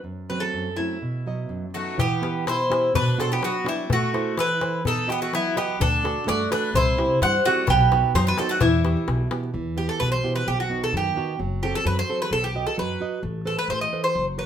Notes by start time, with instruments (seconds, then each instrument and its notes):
0.04 nylon-string guitar F#2
0.30 nylon-string guitar F#3 A3 C4, bouzouki B4
0.40 bouzouki A4
0.54 nylon-string guitar F#2
0.76 nylon-string guitar F#3 A3 C4, bouzouki E4
1.02 nylon-string guitar B2
1.26 nylon-string guitar F#3 B3 D#5
1.49 nylon-string guitar F#2
1.74 nylon-string guitar F#3 B3 D#4, bouzouki A3 F#4
1.98 nylon-string guitar E3, bouzouki B3 G4, darbuka dum
2.22 nylon-string guitar B3 E4 G4, darbuka tek
2.46 nylon-string guitar B2, bouzouki E4 C5, darbuka tek
2.70 nylon-string guitar B3 E4 G4, darbuka tek
2.94 nylon-string guitar B2, bouzouki D4 B4, darbuka dum
3.18 nylon-string guitar B3 D4 F#4, bouzouki C4 A4, darbuka tek
3.32 bouzouki B3 G4
3.41 nylon-string guitar F#3, bouzouki B3 F#4, darbuka tek
3.65 nylon-string guitar B3 D4 F#4, bouzouki E4, darbuka tek
3.69 bouzouki G3
3.90 nylon-string guitar A3, bouzouki A3 F#4, darbuka dum
4.14 nylon-string guitar E4 A4 C5, darbuka tek
4.37 nylon-string guitar E3, bouzouki E4 B4, darbuka tek
4.61 nylon-string guitar E4 A4 C5, darbuka tek
4.85 nylon-string guitar B3, bouzouki D#4 A4, darbuka dum
4.98 darbuka tek
5.07 nylon-string guitar F#4 B4 D#5, bouzouki G4, darbuka tek
5.12 bouzouki B3
5.22 bouzouki A3 F#4
5.33 nylon-string guitar F#3, bouzouki B3 E4, darbuka tek
5.56 bouzouki B3 G4, nylon-string guitar F#4 B4 D#5, darbuka tek
5.70 darbuka tek
5.80 upright bass D2, nylon-string guitar D3, bouzouki D4 A4, darbuka dum
6.04 nylon-string guitar D4 F#4 A4, darbuka tek
6.27 upright bass G2, nylon-string guitar A3, bouzouki F#4 D5, darbuka tek
6.50 nylon-string guitar D4 F#4 A4, bouzouki D4 B4, darbuka tek
6.74 upright bass C2, nylon-string guitar C3, bouzouki E4 C5, darbuka dum
6.98 nylon-string guitar C4 E4 G4, darbuka tek
7.21 upright bass G2, nylon-string guitar G3, bouzouki C5 F#5, darbuka tek
7.45 bouzouki A3 F#4, nylon-string guitar C4 E4 G4
7.67 upright bass B1, nylon-string guitar B2, bouzouki B3 G4, darbuka dum
7.92 nylon-string guitar B3 D#4 F#4, darbuka tek
8.14 upright bass F#2, nylon-string guitar F#3, bouzouki D#4 C5, darbuka tek
8.27 bouzouki D4 B4
8.38 nylon-string guitar B3 D#4 F#4, bouzouki C4 A4, darbuka tek
8.49 bouzouki A3 F#4
8.61 upright bass E2, nylon-string guitar E3, bouzouki G3 E4, darbuka dum
8.84 nylon-string guitar B3 E4 G4, darbuka tek
8.97 darbuka tek
9.07 upright bass B1, nylon-string guitar B2, darbuka tek
9.31 nylon-string guitar B3 E4 G4, darbuka tek
9.43 darbuka tek
9.54 upright bass E2, nylon-string guitar E3
9.77 nylon-string guitar B3 E4 G4, bouzouki G4
9.89 bouzouki A4
10.00 upright bass B1, nylon-string guitar B2, bouzouki B4
10.12 bouzouki C5
10.24 nylon-string guitar B3 E4 G4
10.35 bouzouki B4
10.47 upright bass B1, nylon-string guitar B2, bouzouki G4
10.60 bouzouki F#4
10.70 nylon-string guitar B3 D#4 F#4
10.84 bouzouki A4
10.93 upright bass F#2, nylon-string guitar D#3
10.97 bouzouki G4
11.16 nylon-string guitar B3 D#4 F#4
11.39 upright bass F#1, nylon-string guitar F#3
11.63 nylon-string guitar C4 F#4 A4, bouzouki G4
11.75 bouzouki A4
11.85 upright bass F#2, nylon-string guitar F#3, bouzouki B4
11.99 bouzouki C5
12.09 nylon-string guitar C4 F#4 A4
12.22 bouzouki B4
12.31 upright bass B1, nylon-string guitar B3, bouzouki A4
12.44 bouzouki G4
12.55 nylon-string guitar F#4 B4 D#5
12.67 bouzouki A4
12.78 upright bass F#2, nylon-string guitar F#3, bouzouki B4
13.01 nylon-string guitar F#4 B4 D#5
13.22 upright bass A1, nylon-string guitar A3
13.46 nylon-string guitar A4 B4 C5, bouzouki A4
13.59 bouzouki B4
13.68 upright bass A1, nylon-string guitar E3, bouzouki C5
13.81 bouzouki D#5
13.93 nylon-string guitar A4 B4 C5
14.04 bouzouki C5
14.15 upright bass F#1, nylon-string guitar F#3
14.38 nylon-string guitar F#4 A#4 C#5, bouzouki B4